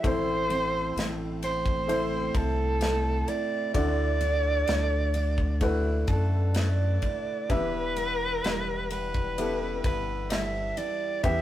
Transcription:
Already playing: G3 B3 E4
0.03 A1 A2 A3 C4 E4 C5, kick, ride
0.50 C4, ride
0.96 A1 A3, snare, ride
1.42 C4 C5, ride
1.66 kick, ride
1.87 A3 C4 E4 C5, ride
2.35 C2 C4 A4, kick, ride
2.81 A3, snare, ride
3.27 E4 D5, ride
3.73 D2 D3 A3 E4 F#4 D5, kick, ride
4.21 D4, ride
4.67 D2 A3, snare, ride
5.14 D4, ride
5.38 kick
5.61 A3 E4 F#4 B4, kick, ride
6.07 F#2 D4 A4, kick, ride
6.54 A3 D5, snare, ride
7.02 E4, kick, ride
7.49 E1 E2 E3 B3 E4 G4 B4 E5, kick, ride
7.96 B3, ride
8.44 E1 G3, snare, ride
8.90 B3 B4, ride
9.14 kick, ride
9.38 B3 E4 G4 A4, ride
9.84 G1 B3 B4, kick, ride
10.30 G3 E5, snare, ride
10.77 E4 D5, ride
11.23 E2 E3 B3 E4 G4 E5 G5, kick, ride

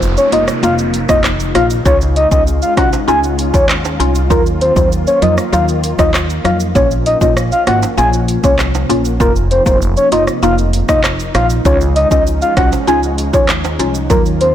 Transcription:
Already playing: F1 C3 A#3 D#4 F4, downlifter
0.02 shaker
0.17 C#5, shaker
0.32 F#1 A#3 D#4 F4 D#5, closed hi-hat, shaker
0.48 cross-stick, shaker
0.63 F1 A#3 D#4 F4 F5, shaker
0.78 shaker
0.94 closed hi-hat, shaker
1.09 F1 A#3 D#4 F4 D#5, kick, cross-stick, shaker
1.24 cross-stick, clap, shaker
1.40 shaker
1.55 A#1 A#3 D#4 F4 F5, cross-stick, closed hi-hat, shaker
1.70 shaker
1.85 C#2 G#3 C#4 D#4 F4 C#5, kick, shaker
2.01 shaker
2.16 D#5, closed hi-hat, shaker
2.31 C#2 C#4 D#4 F4 D#5, kick, shaker
2.47 shaker
2.62 F5, shaker
2.77 C2 C#4 D#4 F4 F#5, kick, cross-stick, closed hi-hat, shaker
2.93 high timbale, shaker
3.08 C#2 C#4 D#4 F4 G#5, shaker
3.23 shaker
3.39 closed hi-hat, shaker
3.54 D#2 C#4 D#4 F4 C#5, kick, shaker
3.69 cross-stick, clap, shaker
3.85 high timbale, shaker
4.00 C2 C#4 D#4 F4, closed hi-hat, shaker
4.15 shaker
4.30 D#2 D#3 F#3 A#3 D#4 F4 A#4, kick, shaker
4.46 shaker
4.61 C5, closed hi-hat, shaker
4.76 D#2 F#3 D#4 F4 C5, kick, shaker
4.92 shaker
5.07 C#5, shaker
5.22 F2 F#3 D#4 F4 D#5, closed hi-hat, shaker
5.38 cross-stick, shaker
5.53 D#2 F#3 D#4 F4 F5, shaker
5.68 shaker
5.84 closed hi-hat, shaker
5.99 D#2 F#3 D#4 F4 D#5, kick, cross-stick, shaker
6.14 cross-stick, clap, shaker
6.30 shaker
6.45 F2 F#3 D#4 F4 F5, cross-stick, closed hi-hat, shaker
6.60 shaker
6.75 A#1 F3 A#3 C#4 F4 C#5, kick, shaker
6.91 shaker
7.06 D#5, closed hi-hat, shaker
7.21 A#1 A#3 C#4 F4 D#5, kick, shaker
7.37 cross-stick, shaker
7.52 F5, shaker
7.67 G#1 A#3 C#4 F4 F#5, cross-stick, closed hi-hat, shaker
7.83 high timbale, shaker
7.98 A#1 A#3 C#4 F4 G#5, shaker
8.13 shaker
8.28 closed hi-hat, shaker
8.44 C2 A#3 C#4 F4 C#5, kick, shaker
8.59 cross-stick, clap, shaker
8.75 high timbale, shaker
8.89 A#1 A#3 C#4 F4, closed hi-hat, shaker
9.05 shaker
9.20 F1 C3 A#3 D#4 F4 A#4, kick, shaker
9.36 shaker
9.51 C5, closed hi-hat, shaker
9.66 F1 A#3 D#4 F4 C5, kick, shaker
9.82 shaker
9.97 C#5, shaker
10.12 F#1 A#3 D#4 F4 D#5, closed hi-hat, shaker
10.27 cross-stick, shaker
10.43 F1 A#3 D#4 F4 F5, shaker
10.58 shaker
10.73 closed hi-hat, shaker
10.89 F1 A#3 D#4 F4 D#5, kick, cross-stick, shaker
11.04 cross-stick, clap, shaker
11.19 shaker
11.35 A#1 A#3 D#4 F4 F5, cross-stick, closed hi-hat, shaker
11.50 shaker
11.65 C#2 F3 G#3 C#4 D#4 F4 C#5, kick, shaker
11.81 shaker
11.96 D#5, closed hi-hat, shaker
12.11 C#2 C#4 D#4 F4 D#5, kick, shaker
12.27 shaker
12.42 F5, shaker
12.57 C2 C#4 D#4 F4 F#5, kick, cross-stick, closed hi-hat, shaker
12.72 high timbale, shaker
12.87 C#2 C#4 D#4 F4 G#5, shaker
13.03 shaker
13.18 closed hi-hat, shaker
13.33 D#2 C#4 D#4 F4 C#5, kick, shaker
13.49 cross-stick, clap, shaker
13.64 high timbale, shaker
13.79 C2 C#4 D#4 F4, closed hi-hat, shaker
13.95 shaker
14.10 D#2 D#3 F#3 A#3 D#4 F4 A#4, kick, shaker
14.26 shaker
14.41 C5, closed hi-hat, shaker

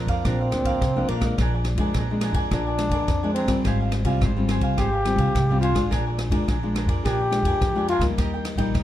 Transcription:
Already playing: F2 F3 A#3 D4
0.06 F2 F5, kick, ride
0.10 A#4 D5
0.25 A#1 A#2 C4 D4 A#4 D5 F5, kick, cross-stick, ride
0.40 A#4 D5 F5
0.51 D2 F3 A#3 D4, muted cavaquinho stroke, cross-stick, ride
0.65 A#4 D5 F5, kick, ride
0.81 C2 F2, kick, cross-stick, ride
0.96 F3 A#3 D4 A#4 D5 F5
1.08 A#1 A#3 D4 A#4 D5 F5, ride
1.20 F3 G#3 D4 A#4 D5 F5, kick, cross-stick, ride
1.38 A#1 A#2 D4 A#4 D5 G#5, kick, cross-stick, ride
1.54 A#4 D5 G#5
1.65 muted cavaquinho stroke, cross-stick, ride
1.76 F2 F3 G#3 D4 G#5, kick, ride
1.80 A#4 D5
1.94 A#1 F2 D4 A#4 D5 G#5, kick, cross-stick, ride
2.11 F3 G#3 D4
2.21 D4 A#4 D5 G#5, cross-stick, ride
2.32 F2 G#5, kick, ride
2.36 A#4 D5
2.51 A#1 A#2 D4 A#4 D5 G#5, kick, cross-stick, ride
2.67 A#4 D5 G#5
2.78 F3 G#3 D4, muted cavaquinho stroke, cross-stick, ride
2.89 F2 D5 G#5, kick, ride
2.94 A#4
3.08 F2, kick, cross-stick, ride
3.23 F3 G#3 D4 A#4 D5 G#5
3.34 C4 D4 A#4 D5 G#5, ride
3.46 G1 G3 C4 F4 D5 G#5, kick, cross-stick, ride
3.50 A#4
3.64 G#1 G#2 G4 C5 F5 G#5, kick, cross-stick, ride
3.80 C5 F5 G#5
3.92 muted cavaquinho stroke, cross-stick, ride
4.02 C2 G3 C4 F4 F5 G#5, kick, ride
4.07 C5
4.21 G#1 G#2 G4 C5 F5 G#5, kick, cross-stick, ride
4.36 G3 C4 F4
4.49 G4 C5 F5 G#5, cross-stick, ride
4.59 C2 F5 G#5, kick, ride
4.64 C5
4.78 G#1 G#2 G4 C5 F5 G#5, kick, cross-stick, ride
4.93 F5 G#5
5.05 G3 C4 F4, cross-stick, ride
5.16 C2 C5 F5 G#5, kick, ride
5.35 C2 G#2, kick, cross-stick, ride
5.49 G3 C4 F4 C5 F5 G#5
5.61 F4 G4 C5 F5 G#5, ride
5.73 G#1 G#3 D4 F4 C5 F5 G#5, kick, cross-stick, ride
5.91 A#1 A#2 D4 A#4 D5 G#5, kick, cross-stick, ride
6.07 A#4 D5 G#5
6.19 muted cavaquinho stroke, cross-stick, ride
6.29 F2 G#3 D4 F4 A#4 D5 G#5, kick, ride
6.48 A#1 F3 D4 A#4 D5 G#5, kick, cross-stick, ride
6.63 G#3 D4 F4
6.75 D4 A#4 D5 G#5, cross-stick, ride
6.86 F2 D5 G#5, kick, ride
6.90 A#4
7.04 A#1 A#2 D4 G4 A#4 D5 G#5, kick, cross-stick, ride
7.21 A#4 D5 G#5
7.31 G#3 D4 F4, muted cavaquinho stroke, cross-stick, ride
7.42 F2 G#5, kick, ride
7.47 A#4 D5
7.60 F2 F3, kick, cross-stick, ride
7.75 G#3 D4 F4 D5 G#5
7.79 A#4
7.88 D4 F4 A#4 D5 G#5, ride
7.99 D2 G3 A#3 D#4 G#5, kick, cross-stick, ride
8.03 A#4 D5
8.18 D#2 D#3 G4 A#4 D#5 G5, kick, cross-stick, ride
8.34 A#4 D#5 G5
8.45 muted cavaquinho stroke, cross-stick, ride
8.56 A#1 G3 A#3 D#4 A#4 D#5 G5, kick, ride
8.74 D#2 A#2 G4 A#4 D#5 G5, kick, cross-stick, ride

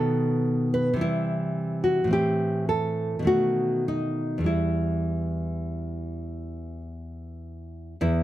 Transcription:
Already playing: B2 D#3 B3 A4
0.74 B4
0.93 C3 E3
0.99 G3 E4
1.84 F#4
2.04 A2 E3
2.11 C4 G4
2.69 A4
3.19 B2 D#3
3.25 A3 F#4
3.88 D#4
4.38 E2 E3
4.44 G3 E4
8.01 E2 B3 E4

